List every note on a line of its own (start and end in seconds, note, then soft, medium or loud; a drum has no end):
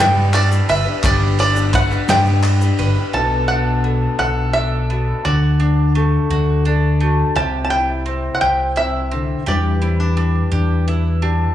0.00 1.00 G1 medium
0.00 0.61 G2 medium
0.00 1.00 G2 medium
0.00 0.32 G3 medium
0.00 1.03 G3 medium
0.00 1.03 B3 medium
0.00 0.33 D4 medium
0.00 1.03 D4 medium
0.00 0.34 G4 medium
0.00 0.68 B4 medium
0.00 1.04 B4 medium
0.00 0.35 B4 medium
0.00 1.04 D5 medium
0.00 0.35 G5 medium
0.33 0.51 G3 medium
0.33 1.38 D4 medium
0.33 0.52 D4 medium
0.33 0.51 G4 medium
0.33 0.49 B4 medium
0.33 0.69 D5 medium
0.33 clap medium
0.33 ride medium
0.33 shaker soft
0.50 0.87 D4 soft
0.50 0.86 G4 soft
0.50 0.84 B4 soft
0.50 shaker medium
0.69 0.84 G1 medium
0.69 1.72 B4 medium
0.69 1.02 E5 medium
0.69 ride medium
0.85 1.03 D4 soft
0.85 1.03 G4 soft
0.85 1.03 B4 soft
1.03 3.10 G1 medium
1.03 1.96 G1 medium
1.03 3.10 G2 medium
1.03 1.36 G3 medium
1.03 1.85 G3 medium
1.03 2.08 B3 medium
1.03 1.85 D4 medium
1.03 1.38 D4 medium
1.03 1.39 G4 loud
1.03 1.85 B4 medium
1.03 1.39 B4 medium
1.03 1.85 D5 medium
1.03 1.37 D5 medium
1.03 kick loud
1.03 clap medium
1.03 ride medium
1.03 shaker loud
1.38 1.56 G3 medium
1.38 1.56 D4 medium
1.38 2.79 D4 medium
1.38 1.55 G4 medium
1.38 1.54 B4 medium
1.38 1.72 D5 medium
1.38 ride medium
1.55 1.92 D4 soft
1.55 1.90 G4 soft
1.55 1.89 B4 medium
1.55 shaker medium
1.73 2.78 B4 medium
1.73 2.09 F#5 medium
1.73 kick medium
1.73 clap medium
1.73 ride medium
1.90 2.08 D4 soft
1.90 2.09 G4 soft
1.90 2.08 B4 soft
1.90 clap soft
1.90 shaker soft
2.08 2.70 G2 medium
2.08 2.89 G3 medium
2.08 2.42 G3 medium
2.08 3.14 B3 medium
2.08 2.90 D4 medium
2.08 2.43 D4 medium
2.08 2.44 G4 medium
2.08 2.90 B4 medium
2.08 2.45 B4 medium
2.08 2.90 D5 medium
2.08 2.84 G5 medium
2.08 snare loud
2.08 ride medium
2.08 shaker loud
2.26 shaker soft
2.43 2.61 G3 medium
2.43 2.62 D4 medium
2.43 2.62 G4 medium
2.43 2.60 B4 medium
2.43 clap medium
2.43 ride medium
2.61 2.98 D4 soft
2.61 2.97 G4 soft
2.61 2.95 B4 medium
2.61 shaker medium
2.79 2.94 G1 medium
2.79 3.13 B4 medium
2.79 clap soft
2.79 ride medium
2.96 3.16 D4 soft
2.96 3.15 G4 soft
2.96 3.14 B4 medium
3.13 4.06 B1 medium
3.13 5.21 B2 medium
3.13 5.21 B3 medium
3.13 3.50 D4 medium
3.13 4.91 F#4 medium
3.13 4.18 A4 medium
3.13 3.47 A5 medium
3.18 3.86 A4 medium
3.48 4.53 D4 medium
3.48 4.20 D4 medium
3.48 4.18 F#5 medium
3.84 4.89 B3 medium
3.84 4.54 A4 medium
4.19 5.12 B1 medium
4.19 5.21 D4 soft
4.19 5.24 A4 medium
4.19 4.55 F#5 medium
4.53 5.24 D4 medium
4.53 5.21 A4 medium
4.53 5.24 E5 medium
4.90 5.25 B3 medium
4.90 5.22 F#4 soft
5.25 6.17 D2 medium
5.25 7.36 D3 medium
5.25 6.29 F#4 medium
5.25 6.61 D5 medium
5.60 5.95 D4 medium
5.60 6.31 D4 medium
5.95 6.99 A3 medium
5.95 6.66 A4 medium
6.30 7.23 D2 medium
6.30 7.32 D4 soft
6.30 6.65 F#4 medium
6.65 7.35 D4 medium
6.65 7.33 A4 medium
7.00 7.36 A3 medium
7.00 7.33 F#4 soft
7.36 8.28 C2 medium
7.36 8.42 C3 medium
7.36 8.40 G4 medium
7.36 7.63 A5 medium
7.65 7.70 A5 medium
7.70 8.05 E4 medium
7.70 9.44 E4 medium
7.70 8.34 G5 medium
8.06 9.10 C4 medium
8.06 9.44 C5 medium
8.35 8.41 F#5 medium
8.41 9.34 C2 medium
8.41 8.76 G4 medium
8.41 8.77 G5 medium
8.76 9.12 C3 medium
8.76 9.46 E4 medium
8.76 9.48 E5 medium
9.11 9.47 D3 medium
9.11 9.47 C4 medium
9.46 10.39 E2 medium
9.46 11.54 E3 medium
9.46 11.55 G3 medium
9.46 9.82 D4 medium
9.46 10.50 G4 medium
9.46 11.21 G4 medium
9.46 10.17 B4 medium
9.46 10.84 D5 medium
9.82 10.00 C4 medium
9.82 10.16 E4 medium
10.00 10.52 D4 soft
10.17 11.21 D4 medium
10.17 10.87 B4 medium
10.52 11.44 E2 medium
10.52 11.54 D4 soft
10.52 10.87 G4 medium
10.88 11.55 E4 medium
10.88 11.54 B4 medium
11.22 11.55 D4 medium
11.22 11.53 G4 soft